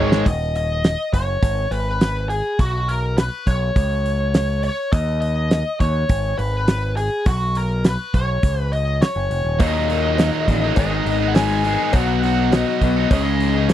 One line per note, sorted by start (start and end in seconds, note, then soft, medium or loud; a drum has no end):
0.00 0.22 G#1 medium
0.00 0.25 G#2 medium
0.00 0.25 D#3 medium
0.00 0.26 G#3 loud
0.00 0.25 D#4 medium
0.00 0.25 G#4 medium
0.00 0.28 C#5 medium
0.00 0.25 D#5 medium
0.12 snare medium
0.26 0.95 D#1 medium
0.26 0.55 D#5 medium
0.26 kick loud
0.26 open hi-hat medium
0.55 1.13 D#5 medium
0.55 open hi-hat medium
0.84 snare loud
0.84 open hi-hat medium
1.13 1.36 F#1 medium
1.13 1.74 C#5 medium
1.13 kick medium
1.13 open hi-hat medium
1.43 1.66 G#1 medium
1.43 kick loud
1.43 open hi-hat medium
1.71 2.41 G#1 medium
1.71 2.29 B4 medium
1.71 open hi-hat medium
2.01 snare loud
2.01 open hi-hat medium
2.29 2.60 G#4 medium
2.29 open hi-hat soft
2.59 3.28 B1 medium
2.59 2.90 F#4 medium
2.59 kick loud
2.59 open hi-hat medium
2.88 3.18 A#4 medium
2.88 open hi-hat medium
3.18 3.45 B4 medium
3.18 snare loud
3.18 open hi-hat medium
3.47 3.70 B1 medium
3.47 4.63 C#5 medium
3.47 kick medium
3.47 open hi-hat soft
3.76 4.69 C#2 medium
3.76 kick loud
3.76 open hi-hat medium
4.06 open hi-hat soft
4.34 snare loud
4.34 open hi-hat medium
4.63 4.92 C#5 medium
4.63 open hi-hat medium
4.93 5.62 D#2 medium
4.93 5.20 D#5 medium
4.93 kick loud
4.93 open hi-hat medium
5.21 5.80 D#5 medium
5.21 open hi-hat medium
5.51 snare loud
5.51 open hi-hat medium
5.80 6.03 D#2 medium
5.80 6.35 C#5 medium
5.80 kick medium
5.80 open hi-hat medium
6.09 6.33 G#1 medium
6.09 kick loud
6.09 open hi-hat medium
6.38 7.08 G#1 medium
6.38 6.96 B4 medium
6.38 open hi-hat medium
6.68 snare loud
6.68 open hi-hat medium
6.97 7.27 G#4 medium
6.97 open hi-hat medium
7.26 7.96 B1 medium
7.26 7.56 F#4 medium
7.26 kick loud
7.26 open hi-hat medium
7.55 7.86 A#4 medium
7.55 open hi-hat medium
7.84 8.13 B4 medium
7.84 snare loud
7.84 open hi-hat medium
8.14 8.37 B1 medium
8.14 8.61 C#5 medium
8.14 kick medium
8.14 open hi-hat soft
8.43 9.01 C#2 medium
8.43 kick loud
8.43 open hi-hat medium
8.61 8.73 B4 medium
8.73 9.02 D#5 medium
8.73 open hi-hat soft
9.02 9.60 C#5 medium
9.02 snare loud
9.02 open hi-hat medium
9.16 9.29 F#1 medium
9.30 9.44 F1 medium
9.30 open hi-hat medium
9.44 9.58 D#1 medium
9.59 10.17 D#2 medium
9.59 10.30 D#2 medium
9.59 10.17 A#2 medium
9.59 9.88 D#3 medium
9.59 9.89 F#3 loud
9.59 9.90 A#3 loud
9.59 9.91 D#4 loud
9.59 10.73 D#5 medium
9.59 kick loud
9.59 open hi-hat medium
9.59 cowbell medium
9.89 10.18 D#3 medium
9.89 10.19 F#3 medium
9.89 10.19 A#3 medium
9.89 10.21 D#4 medium
9.89 open hi-hat soft
10.18 10.62 D#2 medium
10.18 10.62 A#2 medium
10.18 10.34 D#3 medium
10.18 10.33 F#3 medium
10.18 10.32 A#3 medium
10.18 10.32 D#4 loud
10.18 snare loud
10.18 open hi-hat medium
10.18 cowbell medium
10.32 10.46 D#3 medium
10.32 10.47 F#3 medium
10.32 10.47 A#3 medium
10.32 10.48 D#4 medium
10.47 10.71 A1 medium
10.47 10.77 D#2 medium
10.47 10.76 A#2 medium
10.47 10.75 D#3 medium
10.47 muted distorted electric guitar stroke soft
10.47 kick medium
10.47 open hi-hat medium
10.62 10.76 D#3 medium
10.62 10.76 F#3 medium
10.62 10.76 A#3 medium
10.62 10.79 D#4 medium
10.76 11.00 G#1 medium
10.76 11.21 G#2 medium
10.76 11.21 D#3 medium
10.76 10.93 G#3 medium
10.76 10.91 B3 loud
10.76 10.90 D#4 medium
10.76 11.26 D#5 medium
10.76 kick loud
10.76 open hi-hat medium
10.76 cowbell medium
10.91 11.22 G#3 medium
10.91 11.21 B3 medium
10.91 11.20 D#4 medium
11.06 11.75 G#1 medium
11.06 open hi-hat medium
11.21 11.35 G#3 medium
11.21 11.36 B3 medium
11.21 11.37 D#4 medium
11.28 11.35 F#5 medium
11.35 11.79 G#2 medium
11.35 11.62 D#3 medium
11.35 11.51 G#3 medium
11.35 11.50 B3 medium
11.35 11.49 D#4 medium
11.35 11.90 G#5 medium
11.35 snare loud
11.35 open hi-hat medium
11.35 cowbell medium
11.49 11.64 G#3 medium
11.49 11.64 B3 medium
11.49 11.66 D#4 medium
11.64 11.93 G#2 medium
11.64 11.92 D#3 medium
11.64 11.80 G#3 medium
11.64 11.79 B3 medium
11.64 11.78 D#4 medium
11.64 open hi-hat medium
11.78 11.93 G#3 medium
11.78 11.93 B3 medium
11.78 11.95 D#4 medium
11.93 12.63 B1 medium
11.93 12.50 B2 medium
11.93 12.21 F#3 medium
11.93 12.22 B3 loud
11.93 12.24 D#4 loud
11.93 12.24 F#4 loud
11.93 12.21 F#5 loud
11.93 kick loud
11.93 open hi-hat medium
11.93 cowbell medium
12.22 12.51 F#3 medium
12.22 12.52 B3 medium
12.22 12.53 D#4 medium
12.22 12.53 F#4 medium
12.22 12.50 F#5 medium
12.22 open hi-hat medium
12.51 12.96 B2 medium
12.51 12.81 F#3 medium
12.51 12.69 B3 medium
12.51 12.68 D#4 loud
12.51 12.66 F#4 loud
12.51 13.11 D#5 medium
12.51 snare loud
12.51 open hi-hat medium
12.51 cowbell medium
12.67 12.81 B3 medium
12.67 12.82 D#4 medium
12.67 12.82 F#4 medium
12.81 13.05 B1 medium
12.81 13.09 B2 medium
12.81 13.10 F#3 medium
12.81 13.09 B3 medium
12.81 muted distorted electric guitar stroke soft
12.81 kick medium
12.81 open hi-hat soft
12.96 13.11 B3 medium
12.96 13.12 D#4 medium
12.96 13.09 F#4 medium
13.10 13.73 C#2 medium
13.10 13.55 C#3 medium
13.10 13.55 G#3 medium
13.10 13.28 C#4 medium
13.10 13.27 D#4 medium
13.10 13.25 G#4 loud
13.10 13.69 D#5 medium
13.10 kick loud
13.10 open hi-hat medium
13.10 cowbell medium
13.26 13.57 C#4 medium
13.26 13.56 D#4 medium
13.26 13.53 G#4 medium
13.40 open hi-hat medium
13.55 13.70 C#4 medium
13.55 13.71 D#4 medium
13.55 13.71 G#4 medium
13.69 13.73 C#3 medium
13.69 13.73 G#3 medium
13.69 13.73 C#5 medium
13.69 snare loud
13.69 open hi-hat medium
13.69 cowbell medium